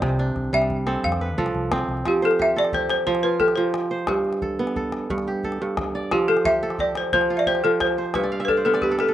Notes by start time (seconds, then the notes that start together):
Already playing: C4 A4 D5
0.02 C2 C3, calabash thump, calabash click
0.19 D4, calabash click
0.36 C2, calabash thump, calabash click
0.44 calabash click
0.53 C2 G3 E5
0.62 calabash click
0.70 calabash thump
0.87 C4 A4, calabash click
0.96 calabash click
1.03 F2 F5, calabash thump, calabash click
1.12 calabash click
1.21 B4
1.37 C2 F3 A4, calabash thump
1.46 calabash click
1.54 C2, calabash click
1.72 C4, calabash thump, calabash click
1.80 calabash click
1.88 C2, calabash click
1.97 calabash click
2.05 F3 G4, calabash thump, calabash click
2.22 A4 C5, calabash click
2.31 calabash click
2.39 G4 E5, calabash thump
2.56 A4 D5
2.64 calabash click
2.73 G4 C5, calabash thump
2.90 C5, calabash click
3.07 F3 C5, calabash thump
3.15 calabash click
3.23 F4 B4
3.39 G4 A4, calabash thump
3.48 calabash click
3.56 F3 C5
3.74 calabash click
3.91 C5, calabash click
3.99 calabash click
4.07 G2 G4, calabash thump, calabash click
4.25 calabash click
4.33 calabash click
4.42 A4, calabash thump
4.59 B3
4.67 calabash click
4.76 A4, calabash thump
4.92 calabash click
5.10 G2, calabash thump
5.18 calabash click
5.27 G4, calabash click
5.43 A4, calabash thump
5.52 calabash click
5.62 G2
5.77 calabash thump, calabash click
5.95 D5, calabash click
6.03 calabash click
6.11 F3 G4, calabash thump, calabash click
6.28 A4 C5
6.37 calabash click
6.45 G4 E5, calabash thump
6.63 A4
6.70 calabash click
6.78 G4 D5, calabash thump
6.95 C5, calabash click
7.13 F3 C5, calabash thump
7.21 calabash click
7.29 F4, calabash click
7.37 D5 E5
7.46 G4 C5, calabash thump
7.55 calabash click
7.64 F3 A4
7.80 C5, calabash thump, calabash click
7.97 C5, calabash click
8.06 calabash click
8.14 G2 B4 E5, calabash thump, calabash click
8.23 D5, calabash click
8.32 F5
8.40 E5, calabash click
8.45 A4 B4 D5, calabash thump
8.57 C5, calabash click
8.65 B3 A4 E5
8.74 D5, calabash click
8.82 G4 B4, calabash thump
8.91 A4, calabash click
8.99 A4 B4, calabash click
9.08 A4